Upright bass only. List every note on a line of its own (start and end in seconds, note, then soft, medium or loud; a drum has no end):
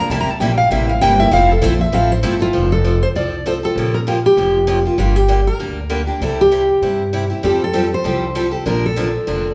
0.10 0.26 C2 medium
0.28 muted upright bass stroke soft
0.40 0.70 A#1 loud
0.70 1.00 A1 medium
1.01 1.31 G1 loud
1.31 1.61 F1 medium
1.62 1.92 A#1 loud
1.92 2.22 A1 medium
2.23 2.53 G1 medium
2.54 3.03 F1 medium
3.15 3.64 C2 medium
3.76 4.25 A#1 medium
4.37 4.86 F1 medium
4.98 5.47 G1 medium
5.59 6.09 D2 medium
6.20 6.70 C2 medium
6.82 7.31 G2 medium
7.43 7.93 F2 medium
8.04 8.54 C2 medium
8.66 9.15 A#1 medium
9.27 9.54 F1 medium